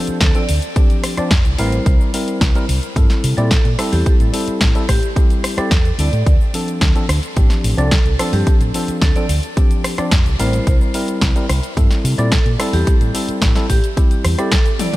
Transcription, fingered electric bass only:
0.08 muted fingered electric bass stroke
0.21 D2
0.49 D2
1.18 muted fingered electric bass stroke
1.31 F2
1.45 C2
1.59 A1
1.86 C2
2.41 C2
2.69 C2
2.96 G2
3.24 C3
3.37 A#2
3.65 A#2
3.93 E2
4.06 muted fingered electric bass stroke
4.20 A1
4.48 muted fingered electric bass stroke
4.61 A1
4.89 A1
5.57 muted fingered electric bass stroke
5.71 E2
5.98 D2
6.12 A2
6.26 D2
6.82 D2
7.09 D2
7.37 A1
7.64 A1
7.78 C2
8.05 C2
8.33 G2
8.47 muted fingered electric bass stroke
8.60 A1
8.88 muted fingered electric bass stroke
9.02 D2
9.29 D2
9.98 muted fingered electric bass stroke
10.12 F2
10.25 C2
10.39 A1
10.67 C2
11.22 C2
11.49 C2
11.77 G2
12.04 C3
12.18 A#2
12.46 A#2
12.73 E2
12.87 muted fingered electric bass stroke
13.01 A1
13.28 muted fingered electric bass stroke
13.42 A1
13.70 A1
14.25 E2

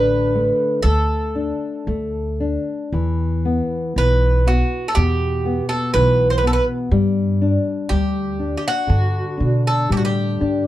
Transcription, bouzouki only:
Already playing: B4
0.82 A4
3.98 B4
4.48 F#4
4.88 A4
4.95 G4
5.69 A4
5.94 B4
6.30 C5
6.38 B4
6.47 A4
6.53 B4
7.89 G4
8.57 G4
8.68 F#4
9.67 A4
9.92 G4
9.97 F#4
10.05 G4

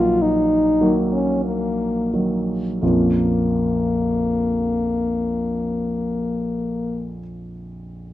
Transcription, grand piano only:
Already playing: A#1 D#3 F#3 A#3
0.81 D#3 F#3 A#3
2.13 D#3 F#3 A#3
2.82 A#1 F2 F3 A#3 C#4 F4

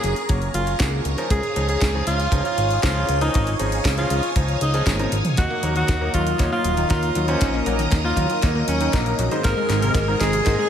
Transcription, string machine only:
Already playing: A#4 G#5 A#5 C#6
1.31 C#5 F5 G#5 D#6
5.37 A#4 D#5 A#5 D#6
9.44 G#5 C6

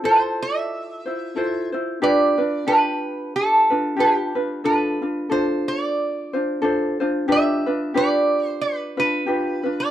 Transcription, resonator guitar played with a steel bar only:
0.05 C5
0.42 E5
2.03 D5
2.68 B4
3.36 A4
4.00 G4
4.65 B4
5.32 C5
5.68 D5
7.32 E5
7.97 D5
8.48 C5
8.61 B4
9.00 B4
9.80 D5

